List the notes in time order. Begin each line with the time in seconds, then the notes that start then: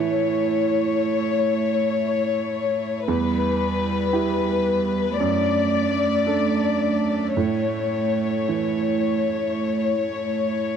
Already playing: A2 E3 A3 E4 C#5 E5
3.08 E2 G3 B4
4.13 E4 G4
5.18 F#2 A3 D4 D5
6.26 D4 A4
7.35 A2 E4 C#5
8.49 E3